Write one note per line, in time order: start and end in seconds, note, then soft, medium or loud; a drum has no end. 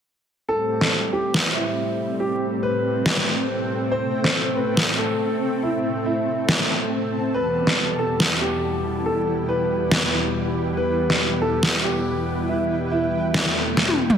0.49 7.30 A2 medium
0.49 3.88 G3 medium
0.49 7.34 C4 medium
0.49 7.30 C4 medium
0.49 1.05 A4 medium
0.68 8.05 A4 medium
0.81 snare soft
1.13 1.37 G4 medium
1.34 snare loud
1.56 2.12 E4 medium
2.20 2.44 G4 medium
2.20 5.39 G5 medium
2.63 3.83 B4 medium
3.06 snare loud
3.17 snare soft
3.91 7.31 A3 medium
3.91 4.48 C5 medium
4.24 snare soft
4.56 4.80 B4 medium
4.77 snare loud
4.99 5.55 A4 medium
5.26 8.70 A5 medium
5.63 5.87 E4 medium
6.06 7.26 E4 medium
6.49 snare loud
6.60 snare soft
7.34 14.16 E2 medium
7.34 14.16 B2 medium
7.34 14.16 G3 medium
7.34 14.18 E4 medium
7.34 7.91 B4 medium
7.67 snare soft
7.82 14.18 G5 medium
7.91 14.18 B4 medium
7.99 8.23 A4 medium
8.20 snare loud
8.41 8.98 G4 medium
9.06 9.30 A4 medium
9.49 10.69 B4 medium
9.91 snare loud
10.03 snare soft
10.77 11.33 B4 medium
11.10 snare soft
11.41 11.66 A4 medium
11.63 snare loud
11.84 12.41 G4 medium
12.49 12.73 E4 medium
12.92 14.12 E4 medium
13.34 snare loud
13.34 swell medium
13.46 snare soft
13.77 snare medium
13.88 high tom medium
14.10 mid tom medium